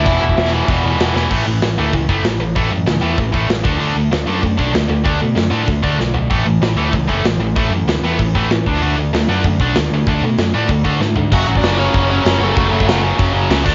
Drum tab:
CC |x---x---x---x---|x---------------|----------------|----------------|
HH |----------------|----o---o---o---|o---o---o---o---|o---o---o---o---|
SD |----o-------o-o-|----o-------o---|----o-------o---|----o-------o---|
FT |----------------|----------------|----------------|----------------|
BD |o--o----o-------|o-------o-o-----|o-------o-o---o-|--------o-o-----|

CC |----------------|----------------|----------------|----------------|
HH |o---o---o-------|o---o---o---o---|o---o---o---o---|o---o---o---o---|
SD |----o-------o---|----o-------o---|----o-------o---|----o-------o---|
FT |--------------o-|----------------|----------------|----------------|
BD |o-------o-o-----|o-------o-o-----|o-------o-o---o-|--------o-o-----|

CC |----------------|x---x---x---x---|x---x---x---x-x-|
HH |o---o---o-------|----------------|----------------|
SD |----o-------o---|----o-------o---|----o-------o---|
FT |--------------o-|----------------|----------------|
BD |o-------o-o-----|o--o----o-------|o--o----o-----o-|